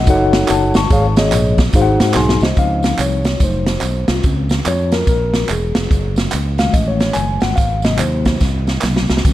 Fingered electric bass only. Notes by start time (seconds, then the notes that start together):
0.07 F#1
0.50 F#1
0.77 G1
0.91 G#1
1.33 A#1
1.74 G#1
2.01 G#2
2.16 B1
2.42 C2
2.57 C#2
2.99 C2
3.41 F1
3.83 B1
4.09 C2
4.25 C#2
4.66 F2
5.08 A#1
5.51 E1
5.76 F1
5.91 F#1
6.34 C#2
6.74 A1
7.16 F#1
7.43 G1
7.58 G#1
8.00 D#2
8.41 C2
8.84 B1
9.10 C2
9.25 C#2